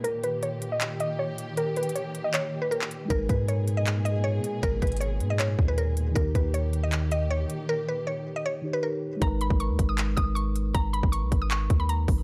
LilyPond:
<<
  \new Staff \with { instrumentName = "Synth pluck" } { \time 4/4 \key gis \minor \tempo 4 = 157 ais'8 b'8 cis''8. dis''8. dis''8 cis''8 r8 | ais'8 b'8 cis''8. dis''16 cis''8. b'16 ais'8 r8 | ais'8 b'8 cis''8. dis''8. dis''8 cis''8 r8 | ais'8 b'8 cis''8. dis''16 cis''8. b'16 ais'8 r8 |
ais'8 b'8 cis''8. dis''8. dis''8 cis''8 r8 | ais'8 b'8 cis''8. dis''16 cis''8. b'16 ais'8 r8 | ais''8 b''8 cis'''8. dis'''8. dis'''8 cis'''8 r8 | ais''8 b''8 cis'''8. dis'''16 cis'''8. b''16 ais''8 r8 | }
  \new Staff \with { instrumentName = "Tine electric piano" } { \time 4/4 \key gis \minor r1 | r1 | <gis dis' ais' b'>1~ | <gis dis' ais' b'>1 |
<dis dis' g' ais'>1~ | <dis dis' g' ais'>2~ <dis dis' g' ais'>8 <dis dis' g' cis''>4. | <gis dis' ais' b'>1~ | <gis dis' ais' b'>1 | }
  \new Staff \with { instrumentName = "String section" } { \clef bass \time 4/4 \key gis \minor << { <dis g'>1~ | <dis g'>1 | <b, gis'>1~ | <b, gis'>1 |
<dis g'>1~ | <dis g'>1 | r1 | r1 | } \\ { ais,1~ | ais,1 | ais,1~ | ais,1~ |
ais,1~ | ais,1 | r1 | r1 | } >> }
  \new Staff \with { instrumentName = "808-style bass" } { \clef bass \time 4/4 \key gis \minor r1 | r1 | gis,,8 gis,2. r8 | gis,,8 gis,,4 gis,4 dis,4. |
dis,8 dis,2. r8 | r1 | gis,,8. gis,,8 dis,16 gis,,4 gis,,4. | gis,,8. gis,,8 b,,16 gis,,4 dis,4 gis,,8 | }
  \new DrumStaff \with { instrumentName = "Drums" } \drummode { \time 4/4 hh8 hh8 hh8 hh8 <hc hh>8 hh8 r8 hh8 | \tuplet 3/2 { hh16 r16 r16 hh16 hh16 hh16 } hh8 hh8 <hc hh>4 hh16 hc16 hh8 | <hh bd>8 <hh bd>8 hh8 hh8 <hc hh>8 hh8 r8 hh8 | <hh bd>8 <hh bd>32 hh32 hh32 hh32 hh8 hh8 <hc hh>8 bd8 hh8 hh8 |
<hh bd>8 <hh bd>8 hh8 hh8 <hc hh>8 hh8 r8 hh8 | r4 r4 r4 r4 | <hh bd>8 hh16 bd16 hh8 <hh bd>8 <hc hh>8 <hh bd>8 hh8 hh8 | <hh bd>8 hh16 bd16 hh8 <hh bd>8 <hc hh>8 <hh bd>8 hh8 <hho bd>8 | }
>>